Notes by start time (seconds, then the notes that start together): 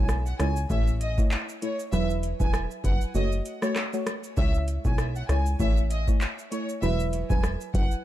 Already playing: B1
0.09 cross-stick, shaker
0.26 F#5, shaker
0.39 C#2 G#3 E4 C#5 G#5, cross-stick, closed hi-hat, shaker
0.56 shaker
0.70 A1 A3 E4 C#5 E5, kick, shaker
0.88 shaker
1.01 D#5, closed hi-hat, shaker
1.18 A3 E4 C#5, kick, shaker
1.31 clap, shaker
1.49 shaker
1.62 A3 E4 C#5, closed hi-hat, shaker
1.80 shaker
1.92 E1 F#3 E4 B4 E5, shaker
2.10 shaker
2.23 closed hi-hat, shaker
2.40 E1 F#3 E4 B4 G#5, kick, shaker
2.54 cross-stick, shaker
2.71 shaker
2.84 F#1 F#3 E4 B4 F#5, kick, closed hi-hat, shaker
3.01 shaker
3.14 F#1 A3 F#4 C#5 D#5, shaker
3.32 shaker
3.46 closed hi-hat, shaker
3.62 A3 F#4 C#5, cross-stick, shaker
3.76 cross-stick, clap, shaker
3.93 A3 F#4 C#5, shaker
4.07 cross-stick, closed hi-hat, shaker
4.24 shaker
4.37 C#2 G#3 E4 C#5 E5, kick, shaker
4.54 shaker
4.68 closed hi-hat, shaker
4.85 B1 G#3 E4 C#5 G#5, kick, shaker
4.98 cross-stick, shaker
5.16 F#5, shaker
5.29 C#2 G#3 E4 C#5 G#5, cross-stick, closed hi-hat, shaker
5.46 shaker
5.59 A1 A3 E4 C#5 E5, kick, shaker
5.77 shaker
5.90 D#5, closed hi-hat, shaker
6.08 A3 E4 C#5, kick, shaker
6.21 clap, shaker
6.39 shaker
6.51 A3 E4 C#5, closed hi-hat, shaker
6.69 shaker
6.82 E1 F#3 E4 B4 E5, shaker
7.00 shaker
7.13 closed hi-hat, shaker
7.30 E1 F#3 E4 B4 G#5, kick, shaker
7.43 cross-stick, shaker
7.61 shaker
7.74 F#1 F#3 E4 B4 F#5, kick, closed hi-hat, shaker
7.91 shaker